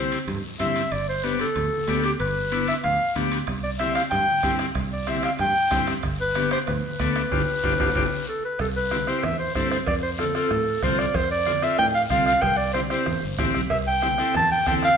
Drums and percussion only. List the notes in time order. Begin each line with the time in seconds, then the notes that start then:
0.12 high timbale, short guiro
0.28 low conga, high timbale, long guiro
0.60 high conga, low conga, high timbale, short guiro
0.76 high timbale, short guiro
0.92 high timbale, long guiro
1.24 high conga, high timbale, short guiro
1.39 high timbale, short guiro
1.56 low conga, high timbale, long guiro
1.73 high conga
1.88 high conga, high timbale, low timbale, short guiro
2.04 high timbale, short guiro
2.20 low conga, high timbale, long guiro
2.52 high conga, high timbale, short guiro
2.68 high timbale, short guiro
2.84 low conga, high timbale, long guiro
3.16 high conga, low conga, high timbale, short guiro
3.32 high timbale, short guiro
3.47 bombo low, bombo rim, high timbale, long guiro
3.79 bombo rim, high conga, high timbale, short guiro
3.95 bombo rim, high timbale, short guiro
4.11 bombo rim, low conga, high timbale, long guiro
4.28 high conga
4.43 bombo low, bombo rim, high conga, high timbale, short guiro
4.59 bombo rim, high timbale, short guiro
4.75 bombo low, bombo rim, low conga, high timbale, long guiro
5.07 bombo rim, high conga, high timbale, short guiro
5.23 bombo rim, high timbale, short guiro
5.39 bombo rim, low conga, high timbale, long guiro
5.71 bombo low, bombo rim, high conga, low conga, high timbale, low timbale, short guiro
5.87 bombo rim, high timbale, short guiro
6.03 bombo low, bombo rim, high timbale, long guiro
6.35 bombo rim, high conga, high timbale, short guiro
6.51 bombo rim, high timbale, short guiro
6.67 bombo rim, low conga, high timbale, long guiro
6.84 high conga
7.00 bombo low, bombo rim, high conga, high timbale, short guiro
7.16 bombo rim, high timbale, short guiro
7.32 bombo low, high conga, high timbale, long guiro
7.63 bombo low, high conga, high timbale, long guiro
7.80 bombo low, high conga, high timbale, long guiro
7.95 bombo low, high conga, high timbale, long guiro
8.59 bombo low, bombo rim, cowbell, long guiro
8.91 bombo rim, high conga, short guiro
9.07 bombo rim, short guiro
9.23 bombo rim, cowbell, high conga, low conga, long guiro
9.55 bombo low, bombo rim, high conga, short guiro
9.71 bombo rim, short guiro
9.87 bombo low, bombo rim, cowbell, high conga, long guiro
10.19 bombo rim, high conga, short guiro
10.35 bombo rim, short guiro
10.51 bombo rim, cowbell, high conga, low conga, long guiro
10.83 bombo low, bombo rim, high conga, low conga, short guiro
10.99 bombo rim, short guiro
11.14 bombo low, bombo rim, cowbell, long guiro
11.46 bombo rim, high conga, short guiro
11.62 bombo rim, short guiro
11.78 bombo rim, cowbell, high conga, low conga, long guiro
12.10 bombo low, bombo rim, high conga, short guiro
12.26 bombo rim, short guiro
12.42 bombo low, bombo rim, cowbell, high conga, low conga, long guiro
12.74 bombo rim, high conga, short guiro
12.90 bombo rim, short guiro
13.06 bombo rim, cowbell, high conga, low conga, long guiro
13.38 bombo low, bombo rim, high conga, low conga, low timbale, short guiro
13.54 bombo rim, short guiro
13.70 bombo low, bombo rim, cowbell, long guiro
14.02 bombo rim, high conga, short guiro
14.18 bombo rim, short guiro
14.34 bombo rim, cowbell, high conga, low conga, long guiro
14.66 bombo low, bombo rim, high conga, short guiro
14.83 bombo rim, short guiro